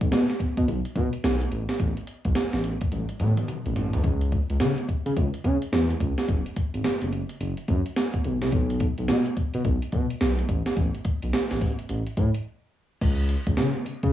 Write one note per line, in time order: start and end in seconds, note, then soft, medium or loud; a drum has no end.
0.01 0.09 B1 medium
0.01 kick loud
0.01 closed hi-hat medium
0.12 0.25 B2 loud
0.12 snare loud
0.12 closed hi-hat medium
0.30 snare medium
0.30 closed hi-hat medium
0.40 0.47 B2 soft
0.40 kick medium
0.40 closed hi-hat medium
0.57 0.65 B2 loud
0.57 kick medium
0.57 closed hi-hat medium
0.68 0.81 B1 medium
0.68 closed hi-hat medium
0.85 closed hi-hat soft
0.96 1.09 B2 loud
0.96 kick medium
0.96 closed hi-hat medium
1.13 closed hi-hat medium
1.24 1.45 B1 loud
1.24 snare loud
1.24 closed hi-hat medium
1.42 closed hi-hat medium
1.52 1.65 A1 medium
1.52 closed hi-hat medium
1.69 snare medium
1.69 closed hi-hat soft
1.80 1.93 A1 loud
1.80 kick loud
1.80 closed hi-hat medium
1.97 closed hi-hat soft
2.07 closed hi-hat medium
2.25 2.33 B1 loud
2.25 kick loud
2.25 closed hi-hat medium
2.35 2.43 A1 soft
2.35 snare loud
2.35 closed hi-hat medium
2.53 2.74 A1 medium
2.53 snare medium
2.53 closed hi-hat medium
2.64 closed hi-hat medium
2.81 kick medium
2.81 closed hi-hat medium
2.92 3.05 A1 loud
2.92 closed hi-hat medium
2.92 high tom medium
3.09 closed hi-hat soft
3.20 3.33 A2 loud
3.20 closed hi-hat medium
3.20 mid tom medium
3.37 closed hi-hat medium
3.37 mid tom medium
3.48 closed hi-hat medium
3.48 mid tom medium
3.66 3.74 A1 medium
3.66 closed hi-hat medium
3.76 3.90 A1 medium
3.76 closed hi-hat medium
3.76 floor tom medium
3.93 4.02 D2 medium
3.93 closed hi-hat medium
3.93 floor tom medium
4.04 4.38 C#2 loud
4.04 kick loud
4.04 closed hi-hat medium
4.21 closed hi-hat medium
4.32 kick medium
4.32 closed hi-hat medium
4.50 4.58 C#2 medium
4.50 closed hi-hat medium
4.60 4.73 C#3 loud
4.60 snare loud
4.60 closed hi-hat medium
4.78 closed hi-hat medium
4.89 4.96 C#3 soft
4.89 kick medium
4.89 closed hi-hat medium
5.06 5.14 C#3 loud
5.06 closed hi-hat medium
5.17 5.30 C#2 loud
5.17 kick loud
5.17 closed hi-hat medium
5.34 closed hi-hat medium
5.44 5.57 C#3 loud
5.44 kick medium
5.44 closed hi-hat medium
5.62 closed hi-hat medium
5.72 5.93 E2 medium
5.72 snare loud
5.72 closed hi-hat medium
5.90 closed hi-hat medium
6.00 6.14 C#2 medium
6.00 kick medium
6.00 closed hi-hat medium
6.18 snare medium
6.18 closed hi-hat medium
6.28 6.42 F#1 loud
6.28 kick loud
6.28 closed hi-hat medium
6.46 closed hi-hat medium
6.56 kick medium
6.56 closed hi-hat medium
6.74 6.82 G#1 medium
6.74 closed hi-hat medium
6.84 6.92 F#1 soft
6.84 snare loud
6.84 closed hi-hat medium
7.02 7.23 F#1 medium
7.02 closed hi-hat medium
7.13 closed hi-hat medium
7.29 closed hi-hat medium
7.41 7.54 F#1 medium
7.41 closed hi-hat medium
7.57 closed hi-hat medium
7.68 7.82 F#2 loud
7.68 kick medium
7.68 closed hi-hat medium
7.86 closed hi-hat medium
7.97 snare loud
7.97 closed hi-hat medium
8.14 kick medium
8.14 closed hi-hat medium
8.24 8.38 B1 medium
8.24 closed hi-hat medium
8.42 8.50 C2 loud
8.42 snare medium
8.42 closed hi-hat medium
8.52 8.87 B1 loud
8.52 kick loud
8.52 closed hi-hat medium
8.70 closed hi-hat medium
8.80 kick medium
8.80 closed hi-hat medium
8.98 9.07 B1 medium
8.98 closed hi-hat medium
9.08 9.22 B2 loud
9.08 snare loud
9.08 closed hi-hat medium
9.26 closed hi-hat medium
9.37 9.44 B2 soft
9.37 kick medium
9.37 closed hi-hat medium
9.54 9.62 B2 loud
9.54 closed hi-hat medium
9.65 9.78 B1 medium
9.65 kick loud
9.65 closed hi-hat medium
9.82 closed hi-hat medium
9.92 10.06 B2 loud
9.92 kick medium
9.92 closed hi-hat medium
10.10 closed hi-hat medium
10.21 10.42 B1 medium
10.21 snare loud
10.21 closed hi-hat medium
10.39 closed hi-hat medium
10.49 10.62 A1 loud
10.49 kick medium
10.49 closed hi-hat medium
10.66 snare medium
10.66 closed hi-hat soft
10.77 10.90 A1 loud
10.77 kick loud
10.77 closed hi-hat medium
10.95 closed hi-hat medium
11.05 kick medium
11.05 closed hi-hat medium
11.22 11.31 B1 medium
11.22 closed hi-hat medium
11.33 11.41 A1 soft
11.33 snare loud
11.33 closed hi-hat medium
11.51 11.72 A1 loud
11.51 snare medium
11.51 closed hi-hat medium
11.61 kick medium
11.61 open hi-hat medium
11.79 closed hi-hat medium
11.89 12.02 A1 loud
11.89 closed hi-hat medium
12.07 closed hi-hat medium
12.17 12.30 A2 loud
12.17 kick medium
12.17 closed hi-hat medium
12.34 closed hi-hat medium
13.01 13.36 C#2 loud
13.01 kick loud
13.01 closed hi-hat medium
13.01 crash loud
13.29 closed hi-hat medium
13.29 tambourine medium
13.47 13.55 C#2 loud
13.47 kick loud
13.47 closed hi-hat medium
13.57 13.71 C#3 loud
13.57 snare loud
13.57 closed hi-hat medium
13.57 tambourine loud
13.86 13.93 C#3 soft
13.86 closed hi-hat medium
13.86 tambourine medium
14.03 14.11 C#3 loud
14.03 kick loud
14.03 closed hi-hat medium